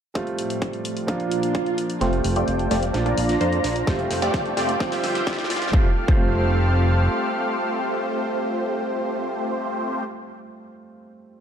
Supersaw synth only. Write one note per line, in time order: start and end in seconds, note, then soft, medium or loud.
2.01 2.33 A3 medium
2.01 2.33 C4 medium
2.01 2.33 F4 medium
2.01 2.33 G4 medium
2.01 2.33 C5 loud
2.36 2.68 A3 loud
2.36 2.68 C4 medium
2.36 2.68 F4 medium
2.36 2.68 G4 medium
2.36 2.68 D5 loud
2.71 2.85 A3 medium
2.71 2.85 C4 medium
2.71 2.85 F4 medium
2.71 2.85 G4 medium
2.71 2.85 D5 loud
3.06 3.38 D4 medium
3.06 3.38 F4 medium
3.06 3.38 D5 medium
3.41 3.85 D4 medium
3.41 3.85 F4 medium
3.41 3.85 C5 medium
3.87 4.19 A3 medium
3.87 4.19 C4 medium
3.87 4.19 F4 medium
3.87 4.19 G4 medium
3.87 4.19 C5 loud
4.22 4.54 A3 loud
4.22 4.54 C4 medium
4.22 4.54 F4 loud
4.22 4.54 G4 medium
4.22 4.54 D5 loud
4.57 4.71 A3 loud
4.57 4.71 C4 medium
4.57 4.71 F4 medium
4.57 4.71 G4 medium
4.57 4.71 D5 loud
4.92 5.24 F4 medium
4.92 5.24 G4 medium
4.92 5.24 E5 medium
5.27 5.71 F4 medium
5.27 5.71 G4 medium
5.27 5.71 D5 medium
5.73 5.86 A3 medium
5.73 5.86 C4 medium
5.73 5.86 F4 medium
5.73 5.86 G4 medium
5.73 5.86 C5 loud
6.08 10.04 A3 medium
6.08 10.04 C4 medium
6.08 10.04 F4 medium
6.08 10.04 G4 medium
6.08 10.04 C5 loud